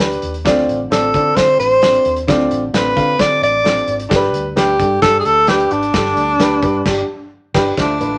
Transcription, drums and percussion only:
0.00 snare loud
0.11 closed hi-hat medium
0.22 closed hi-hat medium
0.34 closed hi-hat medium
0.46 kick loud
0.46 snare loud
0.46 closed hi-hat medium
0.58 snare soft
0.69 closed hi-hat medium
0.92 snare loud
0.92 closed hi-hat medium
1.14 kick medium
1.14 closed hi-hat medium
1.37 kick medium
1.37 snare loud
1.37 closed hi-hat medium
1.60 closed hi-hat medium
1.82 snare loud
1.82 closed hi-hat medium
1.94 closed hi-hat medium
2.05 closed hi-hat medium
2.16 closed hi-hat medium
2.28 kick loud
2.28 snare loud
2.28 closed hi-hat medium
2.40 snare soft
2.51 closed hi-hat medium
2.74 snare loud
2.74 closed hi-hat medium
2.97 kick loud
2.97 closed hi-hat medium
3.19 kick medium
3.19 snare loud
3.19 closed hi-hat medium
3.43 closed hi-hat medium
3.65 snare loud
3.65 closed hi-hat medium
3.77 closed hi-hat medium
3.88 closed hi-hat medium
4.00 closed hi-hat medium
4.11 kick loud
4.11 snare loud
4.11 closed hi-hat loud
4.23 snare soft
4.34 closed hi-hat medium
4.57 snare loud
4.57 closed hi-hat medium
4.80 kick medium
4.80 closed hi-hat medium
5.02 kick medium
5.02 snare loud
5.02 closed hi-hat medium
5.25 closed hi-hat medium
5.47 snare loud
5.47 closed hi-hat medium
5.60 closed hi-hat medium
5.71 closed hi-hat medium
5.82 closed hi-hat medium
5.94 kick loud
5.94 snare loud
5.94 closed hi-hat medium
6.05 snare soft
6.17 closed hi-hat medium
6.40 snare loud
6.40 closed hi-hat medium
6.63 kick loud
6.63 closed hi-hat medium
6.86 kick loud
6.86 snare loud
6.86 crash medium
7.54 kick loud
7.54 snare loud
7.54 crash medium
7.77 kick loud
7.77 snare medium
7.77 closed hi-hat medium
8.01 closed hi-hat medium

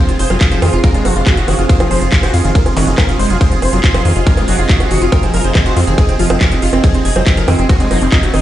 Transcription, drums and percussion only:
0.09 closed hi-hat medium
0.19 open hi-hat loud
0.30 closed hi-hat medium
0.30 high bongo soft
0.41 kick loud
0.41 clap loud
0.41 closed hi-hat medium
0.41 ride medium
0.52 closed hi-hat medium
0.62 open hi-hat loud
0.62 high bongo medium
0.73 closed hi-hat medium
0.84 kick loud
0.84 closed hi-hat medium
0.84 ride medium
0.94 closed hi-hat medium
1.05 open hi-hat loud
1.05 high bongo soft
1.16 closed hi-hat medium
1.27 kick loud
1.27 clap loud
1.27 closed hi-hat medium
1.27 ride medium
1.37 closed hi-hat medium
1.48 open hi-hat loud
1.48 high bongo soft
1.59 closed hi-hat medium
1.69 kick loud
1.69 closed hi-hat medium
1.69 ride medium
1.80 closed hi-hat medium
1.80 high bongo medium
1.91 open hi-hat loud
2.02 closed hi-hat medium
2.12 kick loud
2.12 clap loud
2.12 closed hi-hat medium
2.12 ride medium
2.23 closed hi-hat medium
2.23 high bongo soft
2.34 open hi-hat medium
2.44 closed hi-hat medium
2.55 kick loud
2.55 closed hi-hat medium
2.55 ride medium
2.66 closed hi-hat medium
2.66 high bongo soft
2.77 open hi-hat loud
2.87 closed hi-hat medium
2.98 kick loud
2.98 clap loud
2.98 closed hi-hat medium
2.98 ride medium
2.98 high bongo medium
3.09 closed hi-hat medium
3.19 open hi-hat loud
3.30 closed hi-hat medium
3.41 kick loud
3.41 closed hi-hat medium
3.41 ride medium
3.52 closed hi-hat medium
3.62 open hi-hat loud
3.62 high bongo soft
3.73 closed hi-hat medium
3.84 kick loud
3.84 clap loud
3.84 closed hi-hat medium
3.84 ride medium
3.94 closed hi-hat medium
3.94 high bongo medium
4.05 open hi-hat medium
4.16 closed hi-hat medium
4.27 kick loud
4.27 closed hi-hat medium
4.27 ride medium
4.37 closed hi-hat medium
4.37 high bongo soft
4.48 open hi-hat loud
4.59 closed hi-hat medium
4.69 kick loud
4.69 clap loud
4.69 closed hi-hat medium
4.69 ride medium
4.80 closed hi-hat medium
4.80 high bongo soft
4.91 open hi-hat medium
5.02 closed hi-hat medium
5.12 kick loud
5.12 closed hi-hat medium
5.12 ride medium
5.12 high bongo medium
5.23 closed hi-hat medium
5.34 open hi-hat loud
5.44 closed hi-hat medium
5.55 kick loud
5.55 clap loud
5.55 closed hi-hat medium
5.55 ride medium
5.55 high bongo soft
5.66 closed hi-hat medium
5.77 open hi-hat medium
5.87 closed hi-hat medium
5.98 kick loud
5.98 closed hi-hat medium
5.98 ride medium
5.98 high bongo soft
6.09 closed hi-hat medium
6.19 open hi-hat loud
6.30 closed hi-hat medium
6.30 high bongo medium
6.41 kick loud
6.41 clap loud
6.41 closed hi-hat medium
6.41 ride medium
6.52 closed hi-hat medium
6.62 open hi-hat medium
6.73 closed hi-hat medium
6.73 high bongo soft
6.84 kick loud
6.84 closed hi-hat medium
6.84 ride medium
6.94 closed hi-hat medium
7.05 open hi-hat loud
7.16 closed hi-hat medium
7.16 high bongo soft
7.27 kick loud
7.27 clap loud
7.27 closed hi-hat medium
7.27 ride medium
7.37 closed hi-hat medium
7.48 open hi-hat medium
7.48 high bongo medium
7.59 closed hi-hat medium
7.69 kick loud
7.69 closed hi-hat medium
7.69 ride medium
7.80 closed hi-hat medium
7.91 open hi-hat loud
7.91 high bongo soft
8.02 closed hi-hat medium
8.12 kick loud
8.12 clap loud
8.12 closed hi-hat medium
8.12 ride medium
8.23 closed hi-hat medium
8.34 open hi-hat medium
8.34 high bongo soft

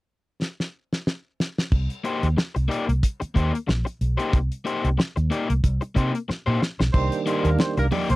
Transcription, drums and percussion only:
0.42 snare medium
0.60 snare medium
0.93 snare medium
1.07 snare medium
1.40 snare medium
1.58 snare medium
1.72 kick loud
1.72 crash medium
1.90 closed hi-hat medium
2.05 closed hi-hat medium
2.23 closed hi-hat soft
2.38 snare loud
2.56 closed hi-hat soft
2.71 closed hi-hat medium
2.89 closed hi-hat medium
3.03 kick medium
3.03 closed hi-hat medium
3.22 closed hi-hat soft
3.36 kick medium
3.36 closed hi-hat medium
3.55 closed hi-hat medium
3.69 snare loud
3.87 closed hi-hat soft
4.01 closed hi-hat medium
4.20 closed hi-hat soft
4.33 kick loud
4.33 closed hi-hat medium
4.52 closed hi-hat medium
4.67 closed hi-hat medium
4.85 closed hi-hat soft
5.00 snare loud
5.17 closed hi-hat soft
5.32 closed hi-hat medium
5.50 closed hi-hat medium
5.64 kick medium
5.64 closed hi-hat medium
5.82 closed hi-hat soft
5.96 kick medium
5.96 closed hi-hat medium
6.15 closed hi-hat medium
6.30 snare soft
6.62 snare medium
6.81 snare medium
6.94 kick loud
6.94 crash medium
7.12 closed hi-hat medium
7.27 closed hi-hat medium
7.45 closed hi-hat medium
7.59 snare loud
7.59 high conga medium
7.77 closed hi-hat soft
7.92 open hi-hat medium
7.92 muted conga soft
7.92 low conga medium
8.10 closed hi-hat medium

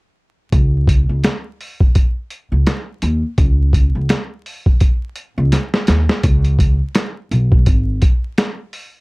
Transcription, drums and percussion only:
0.52 kick medium
0.52 closed hi-hat medium
0.87 kick medium
0.87 closed hi-hat medium
1.24 snare medium
1.24 closed hi-hat medium
1.61 open hi-hat soft
1.81 kick medium
1.95 kick medium
1.95 closed hi-hat medium
2.30 closed hi-hat medium
2.67 snare loud
2.67 closed hi-hat medium
3.02 closed hi-hat medium
3.38 kick loud
3.38 closed hi-hat medium
3.73 kick medium
3.73 closed hi-hat medium
4.09 snare medium
4.09 closed hi-hat medium
4.46 open hi-hat soft
4.66 kick medium
4.80 kick medium
4.80 closed hi-hat medium
5.16 closed hi-hat medium
5.52 snare medium
5.52 closed hi-hat medium
5.74 snare medium
5.87 snare medium
5.87 closed hi-hat medium
6.09 snare medium
6.23 kick loud
6.23 closed hi-hat medium
6.44 closed hi-hat medium
6.59 kick medium
6.59 closed hi-hat medium
6.95 snare loud
6.95 closed hi-hat medium
7.32 closed hi-hat medium
7.52 kick medium
7.66 kick medium
7.66 closed hi-hat medium
8.02 kick medium
8.02 closed hi-hat medium
8.38 snare loud
8.38 closed hi-hat medium
8.73 open hi-hat medium

